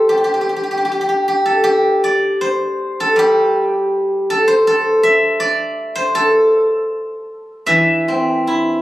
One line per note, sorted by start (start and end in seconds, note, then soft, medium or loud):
0.00 1.45 A4 medium
0.00 1.61 C5 medium
0.00 0.82 D5 medium
0.09 0.17 G4 medium
0.17 0.24 G4 soft
0.24 0.33 G4 medium
0.34 0.41 G4 soft
0.41 0.49 G4 soft
0.49 0.56 G4 soft
0.56 0.63 G4 soft
0.63 0.71 G4 soft
0.71 0.77 G4 soft
0.78 0.84 G4 soft
0.85 0.91 G4 soft
0.92 1.00 G4 soft
1.01 1.08 G4 soft
1.09 1.28 G4 soft
1.28 1.63 G4 soft
1.46 3.00 A4 medium
1.64 3.18 G4 medium
2.04 3.88 D5 medium
2.41 4.39 C5 medium
3.00 4.30 A4 medium
3.16 5.41 G3 medium
3.16 5.54 G4 medium
4.30 4.67 A4 medium
4.48 5.95 C5 medium
4.67 6.15 A4 medium
5.03 6.75 E5 loud
5.40 7.24 D5 medium
5.95 7.94 C5 medium
6.15 8.34 A4 medium
7.66 8.82 E3 medium
7.66 8.82 E5 medium
8.08 8.82 C4 soft
8.47 8.82 E4 soft